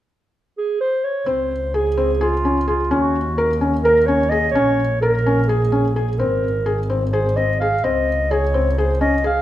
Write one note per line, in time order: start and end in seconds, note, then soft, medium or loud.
0.58 0.79 G#4 medium
0.81 1.06 C5 medium
1.04 1.29 C#5 medium
1.26 2.92 C#2 medium
1.26 1.50 C4 medium
1.26 1.77 C5 medium
1.74 1.86 G#4 medium
1.74 2.23 G#4 medium
1.97 2.09 C4 medium
2.21 2.68 F4 medium
2.21 2.33 G#4 medium
2.45 2.57 C#4 medium
2.68 2.90 F4 medium
2.68 2.80 G#4 medium
2.91 4.56 D#2 medium
2.91 3.15 C#4 medium
2.91 3.57 F#4 medium
3.38 3.50 A#4 medium
3.61 3.73 C#4 medium
3.83 4.07 A#4 medium
3.83 3.97 A#4 medium
4.06 4.20 C#4 medium
4.06 4.31 C#5 medium
4.29 4.43 G#4 medium
4.29 4.50 D#5 medium
4.51 6.20 A#1 medium
4.51 4.96 C#5 medium
4.55 4.79 C#4 medium
5.01 5.49 A#4 medium
5.01 5.14 A#4 medium
5.26 5.38 C#4 medium
5.48 5.94 G#4 medium
5.48 5.61 G#4 medium
5.72 5.84 C#4 medium
5.95 6.20 G#4 medium
5.95 6.08 G#4 medium
6.18 7.85 G#1 medium
6.18 6.43 C4 medium
6.18 6.89 A#4 medium
6.66 6.78 G#4 medium
6.90 7.01 C4 medium
7.12 7.25 G#4 medium
7.12 7.38 C5 medium
7.36 7.49 C4 medium
7.36 7.60 D#5 medium
7.60 7.73 G#4 medium
7.60 7.85 F5 medium
7.84 9.42 C#2 medium
7.84 8.08 C4 medium
7.84 8.33 D#5 medium
8.31 8.43 G#4 medium
8.31 8.79 C#5 medium
8.54 8.66 C4 medium
8.78 8.90 G#4 medium
8.78 9.00 C5 medium
9.01 9.13 C#4 medium
9.01 9.23 D#5 medium
9.24 9.36 G#4 medium
9.24 9.42 F5 medium